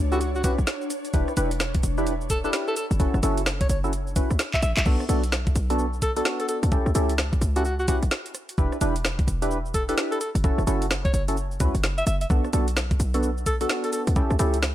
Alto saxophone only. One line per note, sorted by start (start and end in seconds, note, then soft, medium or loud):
0.12 0.18 F#4 medium
0.21 0.30 F#4 medium
0.35 0.41 F#4 medium
0.44 0.53 F#4 medium
2.30 2.39 A4 medium
2.45 2.50 A4 medium
2.68 2.73 A4 loud
2.77 2.86 A4 medium
3.61 3.66 C#5 medium
3.70 3.79 C#5 medium
4.54 4.61 E5 medium
4.62 4.72 E5 medium
4.77 4.83 E5 medium
6.02 6.11 A4 medium
6.17 6.22 A4 medium
6.40 6.46 A4 medium
6.49 6.58 A4 medium
7.56 7.62 F#4 medium
7.65 7.74 F#4 medium
7.79 7.85 F#4 medium
7.88 7.97 F#4 medium
9.74 9.83 A4 medium
9.88 9.94 A4 medium
10.12 10.17 A4 medium
10.20 10.30 A4 medium
11.05 11.10 C#5 medium
11.14 11.23 C#5 medium
11.98 12.05 E5 medium
12.07 12.16 E5 medium
12.21 12.27 E5 medium
13.46 13.56 A4 medium
13.61 13.67 A4 medium
13.84 13.90 A4 medium
13.93 14.02 A4 medium